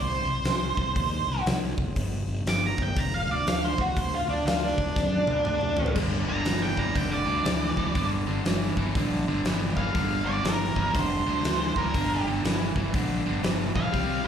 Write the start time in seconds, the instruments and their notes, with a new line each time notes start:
Already playing: fingered electric bass C2
0.00 lead electric guitar C5
0.25 fingered electric bass C2
0.44 fingered electric bass C2, snare, open hi-hat
0.77 fingered electric bass C2, kick
0.96 fingered electric bass D#2, kick, open hi-hat
1.27 fingered electric bass C2
1.46 fingered electric bass C2, snare, open hi-hat
1.78 fingered electric bass F#1, kick
1.96 fingered electric bass G1, kick, open hi-hat
2.27 fingered electric bass G1
2.46 fingered electric bass G1, lead electric guitar D6, snare, open hi-hat
2.67 lead electric guitar A#5
2.78 fingered electric bass G1, kick
2.83 lead electric guitar G5
2.96 fingered electric bass F1, lead electric guitar A#5, kick, open hi-hat
3.14 lead electric guitar F5
3.27 fingered electric bass D2
3.31 lead electric guitar D5
3.46 fingered electric bass D2, lead electric guitar F5, snare, open hi-hat
3.65 lead electric guitar C5
3.78 fingered electric bass D2, lead electric guitar F#4, kick
3.96 fingered electric bass D2, lead electric guitar C5, kick, open hi-hat
4.15 lead electric guitar F4
4.27 fingered electric bass D2, lead electric guitar D4
4.45 fingered electric bass D2, lead electric guitar F4, snare, open hi-hat
4.63 lead electric guitar D4
4.78 fingered electric bass D2, kick
4.96 fingered electric bass F#2, kick, snare
5.27 fingered electric bass D2, high tom
5.45 fingered electric bass D2, mid tom
5.61 mid tom
5.77 fingered electric bass A1, floor tom
5.86 floor tom
5.96 fingered electric bass G1, overdriven electric guitar G2 D3, kick, crash
6.27 fingered electric bass G1, overdriven electric guitar G2 D3, lead electric guitar A#5
6.45 fingered electric bass G1, overdriven electric guitar G2 E3, snare, open hi-hat
6.62 lead electric guitar G5
6.77 fingered electric bass G1, overdriven electric guitar G2 E3, lead electric guitar A#5, kick
6.95 fingered electric bass F1, overdriven electric guitar G2 D3, lead electric guitar G5, kick, open hi-hat
7.11 lead electric guitar D5
7.26 fingered electric bass D2, overdriven electric guitar G2 D3
7.44 fingered electric bass D2, overdriven electric guitar G2 E3, snare, open hi-hat
7.77 fingered electric bass D2, overdriven electric guitar G2 E3, kick
7.94 fingered electric bass G1, overdriven electric guitar G2 D3, kick, open hi-hat
8.26 fingered electric bass G1, overdriven electric guitar G2 D3
8.45 fingered electric bass G1, overdriven electric guitar G2 E3, snare, open hi-hat
8.77 fingered electric bass G1, overdriven electric guitar G2 E3, kick
8.95 fingered electric bass A#1, overdriven electric guitar G2 D3, kick, open hi-hat
9.27 fingered electric bass G1, overdriven electric guitar G2 D3
9.44 fingered electric bass G1, overdriven electric guitar G2 E3, snare, open hi-hat
9.77 fingered electric bass G1, overdriven electric guitar G2 E3, lead electric guitar F5, kick
9.95 fingered electric bass G1, overdriven electric guitar G2 D3, kick, open hi-hat
10.26 fingered electric bass G1, overdriven electric guitar G2 D3, lead electric guitar D5
10.43 fingered electric bass G1, overdriven electric guitar G2 E3, lead electric guitar A#4, snare, open hi-hat
10.76 fingered electric bass G1, overdriven electric guitar G2 E3, kick
10.93 fingered electric bass F1, overdriven electric guitar G2 D3, lead electric guitar C5, kick, open hi-hat
11.26 fingered electric bass D2, overdriven electric guitar G2 D3
11.44 fingered electric bass D2, overdriven electric guitar G2 E3, snare, open hi-hat
11.76 fingered electric bass D2, overdriven electric guitar G2 E3, lead electric guitar A#4, kick
11.94 fingered electric bass G1, overdriven electric guitar G2 D3, kick, open hi-hat
12.26 fingered electric bass G1, overdriven electric guitar G2 D3
12.43 fingered electric bass G1, overdriven electric guitar G2 E3, snare, open hi-hat
12.75 fingered electric bass G1, overdriven electric guitar G2 E3, kick
12.94 fingered electric bass A#1, overdriven electric guitar G2 D3, kick, open hi-hat
13.25 fingered electric bass G1, overdriven electric guitar G2 D3
13.43 fingered electric bass G1, overdriven electric guitar G2 E3, snare, open hi-hat
13.75 fingered electric bass A#1, overdriven electric guitar G2 E3, lead electric guitar F5, kick
13.92 fingered electric bass C2, overdriven electric guitar C3 G3, kick, open hi-hat
14.24 overdriven electric guitar C3 G3